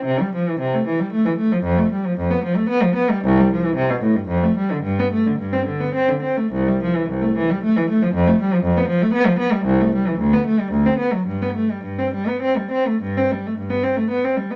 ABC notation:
X:1
M:3/4
L:1/16
Q:1/4=112
K:C
V:1 name="Cello" clef=bass
C, G, F, E, C, A, E, G, A, E, A, F, | F,, A, G, F, F,, B, F, A, B, F, B, G, | C,, G, F, E, C, B,, A,, G,, F,, A, G, D, | G,, B, A, D, G,, C D, B, C D, C A, |
C,, G, F, E, C,, A, E, G, A, E, A, F, | F,, A, G, F, F,, B, F, A, B, F, B, G, | [K:G] C,, A, G, E, D,, B, A, G, D,, C B, F, | G,, B, A, G, G,, C G, B, C G, C A, |
G,, C G, A, G,, B, C A, B, C G, B, |]